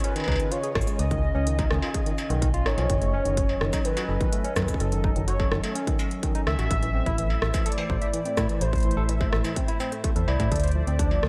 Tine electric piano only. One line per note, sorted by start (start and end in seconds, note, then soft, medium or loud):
0.04 0.13 C#4 loud
0.16 0.25 D#3 medium
0.28 0.33 D#4 loud
0.40 0.45 D#3 medium
0.52 0.57 F4 medium
0.63 0.69 G#4 medium
0.75 0.81 D#3 medium
0.87 0.99 G#3 medium
1.11 1.20 D#3 medium
1.35 1.44 C#4 loud
1.47 1.56 D#3 medium
1.59 1.64 D#4 loud
1.71 1.76 D#3 medium
1.83 1.88 F4 medium
1.94 2.00 G#4 medium
2.06 2.12 D#3 medium
2.30 2.41 D#3 loud
2.42 2.48 D#3 medium
2.54 2.65 F4 loud
2.66 2.77 D#4 medium
2.78 2.87 F3 loud
2.90 2.95 D#3 medium
3.02 3.13 A3 medium
3.14 3.23 C#4 loud
3.25 3.35 D#3 medium
3.61 3.70 D#3 medium
3.73 3.78 D#4 loud
3.85 3.90 D#3 medium
3.97 4.02 F#4 medium
4.09 4.14 A4 medium
4.21 4.26 D#3 medium
4.33 4.44 A3 medium
4.44 4.54 C#4 loud
4.56 4.65 D#3 medium
4.92 5.01 D#3 medium
5.04 5.09 D#4 loud
5.16 5.21 D#3 medium
5.28 5.33 F#4 medium
5.40 5.45 A4 medium
5.51 5.57 D#3 medium
5.63 5.75 A3 medium
5.75 5.85 C#4 loud
5.87 5.96 D#3 medium
6.23 6.32 D#3 medium
6.35 6.40 D#4 loud
6.47 6.52 D#3 medium
6.59 6.64 F#4 medium
6.71 6.76 E5 medium
6.82 6.88 E3 medium
6.94 7.06 C4 medium
7.06 7.15 E4 loud
7.18 7.27 E3 medium
7.54 7.63 E3 medium
7.66 7.71 A4 loud
7.78 7.83 E3 medium
7.90 7.95 C5 medium
8.02 8.07 E5 medium
8.14 8.19 E3 medium
8.26 8.37 C4 medium
8.37 8.46 E4 loud
8.49 8.58 E3 medium
8.85 8.94 E3 medium
8.97 9.02 A4 loud
9.09 9.14 E3 medium
9.21 9.26 C5 medium
9.33 9.38 E5 medium
9.44 9.50 E3 medium
9.56 9.68 C4 medium
9.68 9.77 E4 loud
9.80 9.91 C4 loud
9.92 10.01 A3 medium
10.04 10.09 A3 medium
10.16 10.25 A4 medium
10.28 10.38 E4 loud
10.40 10.49 E4 medium
10.52 10.57 A4 medium
10.63 10.69 C5 medium
10.75 10.81 F3 medium
10.87 10.99 C4 medium
10.99 11.08 D4 loud
11.11 11.20 F3 medium